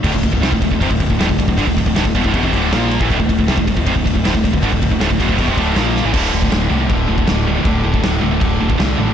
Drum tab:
CC |x---------------|----------------|----------------|----------------|
RD |--x-x-x-x-x-x-x-|x-x-x-x-x-x-x-x-|x-x-x-x-x-x-x-x-|x-x-x-x-x-x-x---|
SD |----o-------o---|----o-------o---|----o-------o---|----o-------o-o-|
BD |oooo-ooooooo-ooo|oooo-oooooo----o|oooo-ooooooo-ooo|oooo-oooooo-----|

CC |x---x---x---x---|x---x---x---x---|
RD |----------------|----------------|
SD |----o-------o---|----o-------o---|
BD |o--o----o--o----|o--o----o--o----|